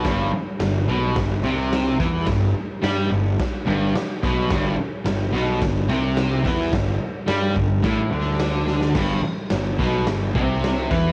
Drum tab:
CC |x---x---x---x---|x---x---x---x---|x---x---x---x---|x---x---x---x---|
SD |o---o---o---o---|o---o---o---o---|o---o---o---o---|o---o---o---o-oo|
BD |o-------o-----o-|o-------o-----o-|o-------o-----o-|o-----o-o-------|

CC |x---x---x---x---|
SD |o---o---o---o---|
BD |o-----o---o---o-|